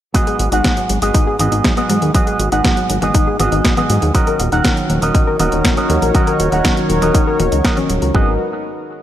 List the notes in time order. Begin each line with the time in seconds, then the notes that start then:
0.14 G#2 F#3 B3 F#4 G#4 D#5, kick, closed hi-hat
0.27 G#4, closed hi-hat
0.39 G#1 F#4, closed hi-hat
0.52 G#1 G#2 B3 D#4 F#4 G#4 F#5, closed hi-hat
0.64 F#3, kick, snare, closed hi-hat
0.77 F#3, closed hi-hat
0.89 G#1 F#3, closed hi-hat
1.02 G#1 G#2 B3 F#4 G#4 D#5, closed hi-hat
1.14 D#4, kick, closed hi-hat
1.27 G#4
1.39 G#1 G#2 B3 F#4 G#4 D#5, closed hi-hat, high tom
1.52 G#1 D#4, closed hi-hat
1.64 F#3, kick, snare, closed hi-hat
1.77 G#2 B3 F#4 G#4 D#5, closed hi-hat
1.90 G#2 F#3, closed hi-hat, high tom
2.02 D#2 G#4, closed hi-hat
2.14 G#2 F#3 B3 F#4 G#4 D#5, kick, closed hi-hat
2.27 G#4, closed hi-hat
2.40 G#1 F#4, closed hi-hat
2.52 G#1 G#2 B3 D#4 F#4 G#4 F#5, closed hi-hat
2.64 F#3, kick, snare, closed hi-hat
2.77 F#3, closed hi-hat
2.90 G#1 F#3, closed hi-hat
3.02 G#1 G#2 B3 F#4 G#4 D#5, closed hi-hat, high tom
3.15 D#4, kick, closed hi-hat
3.27 G#4
3.39 G#1 G#2 B3 F#4 G#4 D#5, closed hi-hat, high tom
3.52 G#1 D#4, closed hi-hat
3.65 F#3, kick, snare, closed hi-hat
3.77 G#2 B3 F#4 G#4 D#5, closed hi-hat, high tom
3.90 G#2 F#3, closed hi-hat
4.02 D#2 G#4, closed hi-hat
4.14 D#3 F#3 C#4 D#4 F#4 A#4 C#5 D#5, kick, closed hi-hat
4.27 A#4, closed hi-hat
4.40 D#1 F#4, closed hi-hat
4.52 D#1 D#3 C#4 D#4 F#4 A#4 F#5, closed hi-hat
4.65 F#3, kick, snare, closed hi-hat
4.77 F#3, closed hi-hat
4.90 D#1 F#3, closed hi-hat
5.02 D#1 D#3 C#4 F#4 A#4 D#5, closed hi-hat
5.15 D#4, kick, closed hi-hat
5.27 A#4
5.39 D#1 D#3 C#4 F#4 A#4 D#5, closed hi-hat, high tom
5.52 D#1 D#4, closed hi-hat
5.65 F#3, kick, snare, closed hi-hat
5.77 D#3 C#4 F#4 A#4 D#5, closed hi-hat
5.90 D#2 F#3, closed hi-hat, high tom
6.02 A#1 A#4, closed hi-hat
6.14 D#3 F#3 C#4 F#4 A#4 D#5, kick, closed hi-hat
6.27 A#4, closed hi-hat
6.40 D#1 F#4, closed hi-hat
6.52 D#1 D#3 C#4 D#4 F#4 A#4 F#5, closed hi-hat
6.65 F#3, kick, snare, closed hi-hat
6.77 F#3, closed hi-hat
6.90 D#1 F#3, closed hi-hat
7.02 D#1 D#3 C#4 F#4 A#4 D#5, closed hi-hat, high tom
7.15 D#4, kick, closed hi-hat
7.27 A#4
7.40 D#1 F#4, closed hi-hat, high tom
7.52 C#2 D#4, closed hi-hat
7.64 D#3 F#3 C#4 F#4 A#4 D#5, kick, snare, closed hi-hat
7.77 C#4, closed hi-hat, high tom
7.90 D#1 F#3, closed hi-hat
8.02 C#2 A#4, closed hi-hat
8.14 G#1 F#3 G#3 B3 D#4 F#4 G#4 A#4 B4 D#5, kick